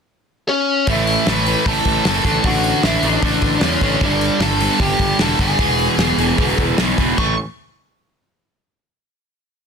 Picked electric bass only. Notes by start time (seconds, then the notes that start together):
0.88 A1
1.27 A1
1.66 A1
1.86 A1
2.05 F#1
2.25 A1
2.45 A1
2.83 A1
3.03 A1
3.23 A1
3.42 A1
3.62 E2
3.81 A1
4.01 G1
4.40 G1
4.80 G1
4.99 G1
5.19 E1
5.39 G1
5.59 E1
5.98 E1
6.18 E1
6.39 E1
6.58 E1
6.79 B1
6.99 E1
7.18 A1